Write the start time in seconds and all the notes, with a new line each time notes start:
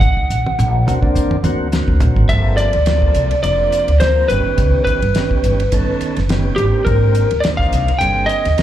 Already playing: F#5
0.01 D2, kick, hi-hat pedal
0.17 kick
0.30 A#1, hi-hat pedal
0.47 high tom
0.59 A#1, hi-hat pedal, mid tom
0.86 D2 D3 A#3 C4 F#4, hi-hat pedal, mid tom
1.01 D3 A#3 C4 D4, muted upright bass stroke, kick
1.15 D3, hi-hat pedal
1.31 mid tom
1.43 D2 D3 A#3 C4 F#4, hi-hat pedal, mid tom
1.72 D3 A#3 C4 F#4, snare, hi-hat pedal
1.88 D2, kick
2.00 A#1, floor tom, hi-hat pedal
2.16 G#1, kick
2.29 G1 F3 A#3 C4 A4 E5, kick, hi-hat pedal, ride
2.57 D5, hi-hat pedal, ride
2.73 D2, ride
2.86 F3 A#3 C4 A4, snare, hi-hat pedal, ride
3.02 kick
3.14 C2, hi-hat pedal, ride
3.31 muted upright bass stroke, ride
3.43 F1 F3 A#3 C4 D4 D5, hi-hat pedal, ride
3.72 hi-hat pedal, ride
3.88 D2, ride
4.00 F3 A#3 C4 A#4 C5, snare, hi-hat pedal, ride
4.28 G1 D#3 B3 C#4 G4 B4, hi-hat pedal, ride
4.46 muted upright bass stroke
4.58 C#2, kick, hi-hat pedal, ride
4.85 B4, muted upright bass stroke, kick, hi-hat pedal, ride
5.02 G1, ride
5.15 D#3 B3 C#4 G4, snare, hi-hat pedal, ride
5.31 muted upright bass stroke, kick
5.44 G1, hi-hat pedal, ride
5.60 ride
5.72 G1 D#3 B3 C#4 A4, kick, hi-hat pedal, ride
6.01 muted upright bass stroke, hi-hat pedal, ride
6.17 F#1, snare, ride
6.29 D#3 B3 C#4 G4, snare, hi-hat pedal, ride
6.56 G#1 D3 A#3 C4 G4, hi-hat pedal, ride
6.85 G#1 A#4, kick, hi-hat pedal, ride
7.15 hi-hat pedal, ride
7.31 D#2, ride
7.40 A#3 C4 D4 D5, hi-hat pedal, ride
7.45 D#4, snare
7.57 F5, kick, snare
7.73 C2, snare, hi-hat pedal, ride
7.88 muted upright bass stroke, ride
7.99 G1 D3 A#3 C4 G#4 G5, hi-hat pedal, ride
8.26 D#5, hi-hat pedal, ride
8.45 D#2, snare, ride
8.57 D3 A#3 C4 A#4, snare, hi-hat pedal, ride